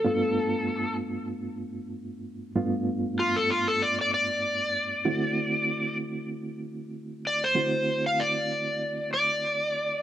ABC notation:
X:1
M:4/4
L:1/16
Q:"Swing 16ths" 1/4=96
K:G
V:1 name="Electric slide guitar"
A6 z8 z2 | z4 =F A F A d d d6- | d6 z8 d c- | c3 =f d6 d6 |]
V:2 name="Reed electric piano"
[G,,A,B,D=F]16 | [G,,A,B,D=F]16 | [D,A,CEF]16 | [D,A,CEF]16 |]